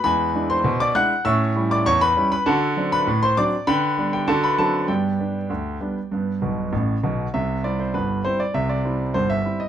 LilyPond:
<<
  \new Staff \with { instrumentName = "Grand piano" } { \time 2/4 \key g \major \tempo 4 = 99 <b' gis'' b''>8. <c'' c'''>8 <d'' d'''>16 <fis'' fis'''>8 | <e'' cis''' e'''>8. <d'' d'''>16 <cis'' cis'''>16 <b' b''>8 <b' b''>16 | <a' fis'' a''>8. <b' b''>8 <c'' c'''>16 <d'' d'''>8 | <b' g'' b''>8. <g' g''>16 <a' a''>16 <b' b''>16 <a' a''>8 |
<g' d'' g''>2~ | <g' d'' g''>4 r4 | \key c \major e''8 d''16 c''16 b'8 c''16 d''16 | e''16 d''8. c''16 e''8 ees''16 | }
  \new Staff \with { instrumentName = "Grand piano" } { \clef bass \time 2/4 \key g \major <e, gis>8 <gis d' e'>8 b,8 <gis d' e'>8 | <a, cis'>8 <g cis' e'>8 e,8 <g cis' e'>8 | <d fis'>8 <fis c' d'>8 a,8 <fis c' d'>8 | d8 <g b d'>8 <d fis'>8 <fis c' d'>8 |
<g, b>8 <g b d'>8 d,8 <g b d'>8 | <g, b>8 <b,, b,>8 <a,, a,>8 <b,, b,>8 | \key c \major <c, c>8 <g c' e'>8 <g,, g,>8 <g c' e'>8 | <c, c>8 <g c' e'>8 <g,, g,>8 <g c' e'>8 | }
>>